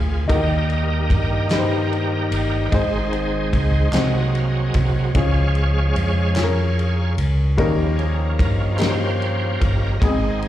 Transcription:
0.00 0.26 D2 medium
0.00 0.26 A#2 medium
0.00 0.12 G#3 medium
0.00 0.12 C4 medium
0.00 0.12 D4 medium
0.00 0.12 F4 medium
0.00 0.25 F4 medium
0.00 0.25 G#4 medium
0.00 0.16 A#4 medium
0.28 1.07 D#2 loud
0.28 2.68 D#3 soft
0.28 1.47 D#3 medium
0.28 2.69 G3 soft
0.28 2.69 A#3 medium
0.28 1.33 D#4 medium
0.28 0.36 F#4 medium
0.28 1.47 G4 medium
0.28 1.33 A#4 medium
0.28 1.48 A#4 medium
0.28 1.55 D#5 medium
0.28 kick loud
0.28 ride medium
0.35 1.36 G4 medium
0.70 ride soft
1.10 2.28 G2 medium
1.10 kick loud
1.10 ride medium
1.49 2.68 D#4 medium
1.49 2.55 D#4 medium
1.49 2.68 G4 medium
1.49 2.55 G4 medium
1.49 2.61 A#4 medium
1.49 1.58 B4 medium
1.49 snare loud
1.49 clap medium
1.49 ride medium
1.59 2.59 C5 medium
1.93 ride soft
2.31 2.69 G1 medium
2.31 ride medium
2.66 3.89 D#3 soft
2.66 3.89 G#3 soft
2.66 3.89 C4 medium
2.66 3.89 D#4 medium
2.66 2.73 B4 medium
2.71 3.49 G#1 loud
2.71 3.91 G#2 medium
2.71 3.76 D#4 medium
2.71 3.90 G#4 medium
2.71 3.77 G#4 medium
2.71 3.97 C5 medium
2.71 3.77 C5 medium
2.71 kick loud
2.71 ride medium
3.13 ride soft
3.53 3.91 C#2 loud
3.53 kick loud
3.53 ride medium
3.92 4.70 C2 medium
3.92 5.12 C3 medium
3.92 5.11 F#3 medium
3.92 4.97 G#3 medium
3.92 5.12 A#3 medium
3.92 4.98 C4 medium
3.92 5.13 C4 medium
3.92 4.98 D#4 medium
3.92 4.98 F#4 medium
3.92 5.12 F#4 medium
3.92 5.12 G#4 medium
3.92 4.98 C5 medium
3.92 snare loud
3.92 clap loud
3.92 ride medium
3.96 4.37 D#5 medium
4.35 4.48 F5 medium
4.35 ride soft
4.48 4.57 D#5 medium
4.57 4.66 C#5 medium
4.67 4.76 D#5 medium
4.74 5.12 C2 medium
4.74 kick loud
4.74 ride medium
5.14 5.92 C#2 loud
5.14 6.33 C#3 medium
5.14 6.34 F3 medium
5.14 6.34 G#3 soft
5.14 6.19 C#4 medium
5.14 6.34 C#4 medium
5.14 6.19 F4 medium
5.14 6.20 G#4 medium
5.14 7.16 G#4 medium
5.14 7.15 C#5 medium
5.14 7.15 F5 medium
5.14 kick loud
5.14 ride medium
5.55 ride soft
5.96 7.14 F2 medium
5.96 ride medium
6.36 7.40 C#4 medium
6.36 7.40 F4 medium
6.36 6.44 G#4 medium
6.36 snare loud
6.36 clap loud
6.36 ride medium
6.44 7.44 A#4 medium
6.79 ride soft
7.17 7.55 C#2 medium
7.17 ride medium
7.57 8.36 D#2 loud
7.57 8.76 D#3 medium
7.57 9.97 F3 medium
7.57 8.62 G3 medium
7.57 8.62 A#3 medium
7.57 9.97 A#3 soft
7.57 8.62 C#4 medium
7.57 9.97 C#4 medium
7.57 8.62 D#4 medium
7.57 8.62 A#4 loud
7.57 kick loud
7.57 ride medium
7.96 8.15 G#4 medium
7.96 ride soft
8.38 9.57 G2 medium
8.38 8.56 A#4 medium
8.38 kick loud
8.38 ride medium
8.77 9.83 G3 medium
8.77 9.83 A#3 medium
8.77 9.83 C#4 medium
8.77 9.83 D#4 medium
8.77 9.97 G4 medium
8.77 9.84 A#4 medium
8.77 9.62 C5 loud
8.77 clap medium
8.81 snare loud
8.81 ride medium
9.22 ride soft
9.59 9.98 G1 medium
9.59 10.02 A#4 medium
9.59 kick medium
9.59 ride medium
10.00 10.48 G#1 loud
10.00 10.48 G#2 medium
10.00 10.48 D#3 soft
10.00 10.48 G#3 soft
10.00 10.08 B3 medium
10.00 10.48 C4 medium
10.00 10.48 D#4 medium
10.00 10.48 G#4 medium
10.00 kick loud
10.00 ride medium
10.08 10.48 C4 medium
10.42 ride soft

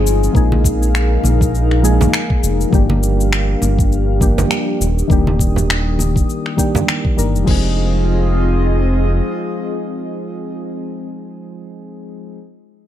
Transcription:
0.00 0.29 G1 loud
0.00 0.33 F3 medium
0.00 0.34 G#3 medium
0.00 0.32 C4 medium
0.00 0.36 C4 medium
0.00 0.36 D#4 medium
0.00 0.32 F4 medium
0.00 0.37 G#4 medium
0.00 2.68 G#4 medium
0.00 0.32 D#5 medium
0.07 shaker medium
0.23 shaker soft
0.33 1.18 A#1 loud
0.33 1.79 F3 medium
0.33 1.80 G#3 medium
0.33 1.80 A#3 medium
0.33 2.70 D#4 medium
0.33 1.81 D#4 medium
0.33 7.44 A#4 medium
0.33 2.71 F5 medium
0.33 kick loud
0.33 shaker soft
0.37 1.81 G#4 medium
0.52 high conga medium
0.65 kick medium
0.65 shaker medium
0.83 shaker soft
0.95 finger snap medium
0.95 shaker soft
1.24 2.07 A#1 medium
1.24 high conga medium
1.24 shaker medium
1.41 kick loud
1.41 shaker soft
1.55 shaker soft
1.71 finger snap soft
1.83 1.95 F3 medium
1.83 1.96 G#3 medium
1.83 1.96 A#3 medium
1.83 1.96 D#4 medium
1.83 1.97 G#4 medium
1.83 shaker medium
2.01 high conga medium
2.01 low conga medium
2.01 shaker soft
2.13 finger snap loud
2.13 shaker soft
2.30 kick loud
2.43 2.65 F1 medium
2.43 shaker medium
2.61 shaker soft
2.70 3.56 G1 loud
2.70 4.17 F3 medium
2.70 4.17 G3 medium
2.70 4.18 A#3 medium
2.70 7.44 D4 medium
2.70 4.18 D4 medium
2.70 7.44 G4 medium
2.70 4.78 F5 medium
2.70 kick loud
2.70 shaker soft
2.75 4.19 G4 medium
2.90 high conga medium
3.03 shaker medium
3.21 shaker soft
3.33 finger snap medium
3.33 shaker soft
3.62 4.45 G1 loud
3.62 high conga medium
3.62 shaker medium
3.79 kick loud
3.79 shaker soft
3.92 shaker soft
4.20 4.33 F3 medium
4.20 4.33 G3 medium
4.20 4.34 A#3 medium
4.20 4.34 D4 medium
4.20 4.34 G4 medium
4.20 kick medium
4.20 shaker medium
4.38 high conga medium
4.38 low conga medium
4.38 shaker soft
4.51 finger snap medium
4.51 shaker soft
4.80 5.03 D#1 medium
4.80 7.45 D#6 medium
4.80 shaker medium
4.99 shaker soft
5.08 6.23 D#1 medium
5.08 6.54 D#3 medium
5.08 6.55 G3 medium
5.08 6.55 A#3 medium
5.08 6.56 D4 medium
5.08 kick loud
5.08 shaker soft
5.12 6.56 G4 medium
5.27 high conga medium
5.39 kick medium
5.39 shaker medium
5.56 low conga medium
5.56 shaker soft
5.70 finger snap medium
5.70 shaker soft
5.99 high conga medium
5.99 shaker medium
6.16 kick medium
6.16 shaker soft
6.30 shaker soft
6.46 finger snap soft
6.57 7.14 D#3 medium
6.57 7.14 G3 medium
6.57 7.14 A#3 medium
6.57 7.15 D4 medium
6.57 7.15 G4 medium
6.57 kick soft
6.57 shaker medium
6.75 high conga medium
6.75 low conga medium
6.75 shaker soft
6.88 finger snap medium
6.88 shaker soft
7.05 kick medium
7.17 7.37 G1 medium
7.17 7.44 D#3 medium
7.17 7.44 G3 medium
7.17 7.44 A#3 medium
7.17 7.44 D4 medium
7.17 7.45 A#4 medium
7.17 shaker medium
7.35 7.44 F1 medium
7.35 shaker soft
7.44 9.22 F1 medium
7.44 10.61 F3 medium
7.44 10.63 G#3 medium
7.44 10.61 C4 medium
7.44 10.64 C4 medium
7.44 10.61 F4 medium
7.44 10.61 G#4 medium
7.44 10.61 D#5 medium
7.44 kick medium
7.44 crash medium
7.49 10.66 D#4 medium
7.49 10.68 G#4 medium

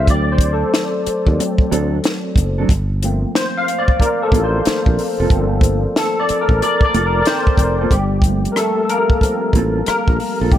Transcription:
0.00 0.10 C5 medium
0.00 0.10 F5 medium
0.07 0.63 D2 medium
0.07 0.56 F#3 medium
0.07 0.56 A3 soft
0.07 0.56 C4 medium
0.07 0.32 D5 loud
0.07 kick loud
0.07 closed hi-hat medium
0.32 0.51 C5 medium
0.38 kick medium
0.38 closed hi-hat medium
0.53 1.14 A4 medium
0.74 snare loud
0.74 closed hi-hat medium
1.07 muted fretless electric bass stroke soft
1.07 closed hi-hat medium
1.27 1.37 D#2 medium
1.27 kick medium
1.39 1.68 F#3 soft
1.39 1.68 A3 soft
1.39 1.69 C4 medium
1.39 muted clean electric guitar stroke soft
1.39 closed hi-hat medium
1.58 muted fretless electric bass stroke soft
1.58 kick medium
1.71 1.99 D2 medium
1.71 1.94 F#3 medium
1.71 1.94 C4 medium
1.71 1.94 D4 medium
1.71 1.95 A4 medium
1.71 closed hi-hat medium
2.04 snare loud
2.04 closed hi-hat medium
2.36 2.64 F#1 medium
2.36 kick loud
2.36 closed hi-hat medium
2.58 2.69 F#3 medium
2.58 2.69 C4 medium
2.58 2.69 D4 medium
2.58 2.68 A4 medium
2.69 3.24 G1 medium
2.69 kick loud
2.69 closed hi-hat medium
3.03 3.49 F3 medium
3.03 3.49 A3 soft
3.03 3.50 A#3 medium
3.03 3.50 C4 medium
3.03 closed hi-hat medium
3.35 3.58 C5 medium
3.35 snare loud
3.35 closed hi-hat medium
3.57 3.77 F5 loud
3.68 closed hi-hat medium
3.79 3.88 D5 loud
3.88 kick medium
4.00 4.23 A#4 medium
4.00 muted clean electric guitar stroke soft
4.00 kick medium
4.00 closed hi-hat medium
4.22 4.44 A4 medium
4.32 4.60 A1 medium
4.32 4.62 F3 soft
4.32 4.62 A3 soft
4.32 4.55 A#3 medium
4.32 4.62 A#3 soft
4.32 4.56 C4 medium
4.32 4.63 C4 soft
4.32 4.56 F4 medium
4.32 4.56 A4 loud
4.32 kick medium
4.32 closed hi-hat medium
4.44 5.05 C5 medium
4.65 muted fretless electric bass stroke soft
4.65 snare medium
4.65 closed hi-hat medium
4.86 4.96 A#1 medium
4.86 kick medium
4.99 open hi-hat soft
5.20 5.29 F1 medium
5.20 5.30 A#3 soft
5.20 5.30 C4 medium
5.20 5.30 F4 medium
5.20 5.29 A4 medium
5.30 5.85 G1 loud
5.30 7.87 F3 medium
5.30 7.88 A#3 medium
5.30 7.28 C4 medium
5.30 5.97 A4 medium
5.30 kick loud
5.30 closed hi-hat medium
5.61 kick loud
5.61 closed hi-hat medium
5.96 6.17 A4 medium
5.96 snare loud
5.96 closed hi-hat medium
6.20 6.41 D5 loud
6.29 muted fretless electric bass stroke medium
6.29 closed hi-hat medium
6.41 6.62 A#4 medium
6.49 6.59 A1 medium
6.49 kick medium
6.61 6.83 D5 loud
6.61 muted clean electric guitar stroke soft
6.61 closed hi-hat medium
6.81 7.06 D5 loud
6.81 muted fretless electric bass stroke soft
6.81 kick medium
6.94 7.21 F1 medium
6.94 7.16 A#3 medium
6.94 7.17 C4 loud
6.94 7.17 F4 loud
6.94 7.17 A4 loud
6.94 closed hi-hat medium
7.06 7.66 A#4 medium
7.21 7.26 D5 medium
7.25 7.89 C4 medium
7.25 7.93 C5 loud
7.25 snare loud
7.25 closed hi-hat medium
7.47 kick medium
7.58 7.85 F1 medium
7.58 kick loud
7.58 closed hi-hat medium
7.81 7.91 A#3 medium
7.81 7.91 C4 medium
7.81 7.91 F4 medium
7.81 7.90 A4 medium
7.91 8.46 G1 medium
7.91 8.49 G3 medium
7.91 8.53 G4 medium
7.91 kick medium
7.91 closed hi-hat medium
8.22 8.71 F3 soft
8.22 8.57 A3 soft
8.22 kick medium
8.22 closed hi-hat medium
8.26 8.72 A#3 soft
8.26 8.72 C4 medium
8.45 closed hi-hat soft
8.52 8.57 A#4 medium
8.56 8.83 A3 medium
8.56 8.83 A4 medium
8.56 cross-stick medium
8.56 closed hi-hat medium
8.84 8.89 A4 medium
8.89 9.23 A#3 medium
8.89 9.86 A#4 medium
8.89 closed hi-hat medium
9.10 kick medium
9.21 9.52 F3 soft
9.21 9.52 A#3 soft
9.21 9.52 C4 soft
9.21 9.52 A4 soft
9.21 muted clean electric guitar stroke soft
9.21 kick medium
9.21 closed hi-hat medium
9.53 9.81 A1 medium
9.53 9.77 A#3 medium
9.53 9.78 C4 medium
9.53 kick medium
9.53 closed hi-hat medium
9.57 9.78 F4 medium
9.57 9.78 A4 medium
9.86 10.49 A#3 medium
9.86 10.54 A#4 medium
9.86 muted fretless electric bass stroke soft
9.86 cross-stick medium
9.86 closed hi-hat medium
10.08 10.18 A#1 medium
10.08 kick medium
10.20 open hi-hat soft
10.41 10.52 A#1 medium
10.41 10.52 A#3 soft
10.41 10.52 C4 soft
10.41 10.52 F4 soft
10.41 10.51 A4 medium
10.52 10.58 C2 medium
10.52 10.58 D#3 medium
10.52 10.58 G3 medium
10.52 10.58 A#3 soft
10.52 10.58 D4 medium
10.52 10.58 G4 medium
10.52 kick medium
10.52 closed hi-hat medium

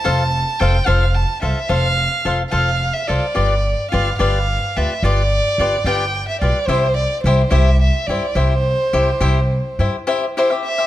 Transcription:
0.00 0.61 A5 medium
0.04 0.42 F1 medium
0.04 0.22 F4 medium
0.04 0.23 A4 medium
0.04 0.23 C5 medium
0.04 0.23 F5 medium
0.59 0.78 F1 medium
0.59 0.76 F4 medium
0.59 0.76 A4 medium
0.59 0.76 C5 medium
0.59 0.77 F5 medium
0.59 0.87 G5 medium
0.86 1.23 F1 medium
0.86 1.04 F4 medium
0.86 1.04 A4 medium
0.86 1.05 C5 medium
0.86 1.16 F5 medium
0.86 1.04 F5 medium
1.15 1.42 A5 medium
1.41 1.51 C2 medium
1.41 1.58 F4 medium
1.41 1.58 A4 medium
1.41 1.59 C5 medium
1.41 1.70 E5 medium
1.41 1.59 F5 medium
1.69 2.06 F1 medium
1.69 1.87 F4 medium
1.69 1.87 A4 medium
1.69 1.87 C5 medium
1.69 2.32 F5 medium
1.69 1.87 F5 medium
2.25 2.43 F1 medium
2.25 2.41 F4 medium
2.25 2.41 A4 medium
2.25 2.42 C5 medium
2.25 2.42 F5 medium
2.51 2.89 F1 medium
2.51 2.70 F4 medium
2.51 2.70 A4 medium
2.51 2.70 C5 medium
2.51 2.95 F5 medium
2.51 2.70 F5 medium
2.94 3.09 E5 medium
3.08 3.18 C2 medium
3.08 3.25 F4 soft
3.08 3.25 A4 soft
3.08 3.25 C5 medium
3.08 3.91 D5 medium
3.08 3.25 F5 medium
3.35 3.74 G1 medium
3.35 3.53 F4 medium
3.35 3.54 G4 medium
3.35 3.54 B4 medium
3.35 3.54 D5 medium
3.91 4.11 G1 medium
3.91 4.09 F4 medium
3.91 4.09 G4 medium
3.91 4.09 B4 medium
3.91 4.10 D5 medium
3.91 4.17 F5 medium
4.19 4.57 G1 medium
4.19 4.37 F4 medium
4.19 4.37 G4 medium
4.19 4.38 B4 medium
4.19 4.38 D5 medium
4.19 4.78 F5 medium
4.76 4.85 D2 medium
4.76 4.92 F4 medium
4.76 4.92 G4 soft
4.76 4.93 B4 medium
4.76 4.93 D5 medium
4.76 5.05 E5 medium
5.03 5.39 G1 medium
5.03 5.21 F4 medium
5.03 5.22 G4 medium
5.03 5.22 B4 medium
5.03 5.88 D5 medium
5.03 5.22 D5 medium
5.58 5.76 G1 medium
5.58 5.75 F4 medium
5.58 5.76 G4 medium
5.58 5.76 B4 medium
5.58 5.76 D5 medium
5.84 6.21 G1 medium
5.84 6.04 F4 medium
5.84 6.04 G4 medium
5.84 6.04 B4 medium
5.84 6.04 D5 medium
5.84 6.28 G5 medium
6.28 6.40 E5 medium
6.41 6.50 B1 medium
6.41 6.58 F4 medium
6.41 6.58 G4 soft
6.41 6.58 B4 soft
6.41 6.68 D5 medium
6.41 6.59 D5 medium
6.67 7.05 C2 medium
6.67 6.86 E4 medium
6.67 6.87 G4 medium
6.67 6.96 C5 loud
6.67 6.87 C5 medium
6.67 6.87 E5 medium
6.97 7.22 D5 medium
7.23 7.42 C2 medium
7.23 7.41 E4 medium
7.23 7.42 G4 medium
7.23 7.52 C5 medium
7.23 7.42 C5 medium
7.23 7.42 E5 medium
7.51 7.88 C2 loud
7.51 7.69 E4 medium
7.51 7.69 G4 medium
7.51 7.70 C5 medium
7.51 7.81 E5 medium
7.51 7.70 E5 medium
7.81 8.09 E5 medium
8.07 8.17 G2 medium
8.07 8.25 E4 medium
8.07 8.25 G4 medium
8.07 8.26 C5 medium
8.07 8.37 D5 medium
8.07 8.25 E5 medium
8.35 8.73 C2 medium
8.35 8.53 E4 medium
8.35 8.54 G4 medium
8.35 9.79 C5 medium
8.35 8.54 C5 medium
8.35 8.54 E5 medium
8.93 9.11 C2 medium
8.93 9.09 E4 medium
8.93 9.10 G4 medium
8.93 9.10 C5 medium
8.93 9.10 E5 medium
9.20 9.58 C2 medium
9.20 9.39 E4 medium
9.20 9.39 G4 medium
9.20 9.39 C5 loud
9.20 9.39 E5 medium
9.79 9.88 G2 medium
9.79 9.95 E4 medium
9.79 9.96 G4 soft
9.79 9.96 C5 medium
9.79 9.96 E5 medium
10.07 10.25 E4 medium
10.07 10.25 G4 medium
10.07 10.25 C5 medium
10.07 10.26 E5 medium
10.37 10.50 E4 medium
10.37 10.51 G4 medium
10.37 10.50 C5 medium
10.37 10.49 E5 medium
10.50 10.68 G4 soft
10.50 10.67 C5 soft
10.50 10.67 E5 soft
10.65 10.87 E5 medium
10.78 10.87 G4 soft
10.78 10.87 C5 soft
10.78 10.87 E5 medium

